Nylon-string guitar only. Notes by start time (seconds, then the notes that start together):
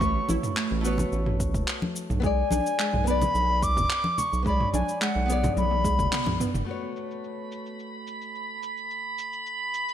Already playing: A3
0.00 F#4 B4 C#5
0.81 A3 F#4
0.85 B4 C#5
2.20 B3 G#4
2.24 C#5 D5
3.04 B3 G#4
3.08 B4 D5
4.43 B3 G#4
4.47 C#5 D5
5.26 B3 G#4
5.30 C#5 D5
6.65 A3 F#4
6.69 B4 C#5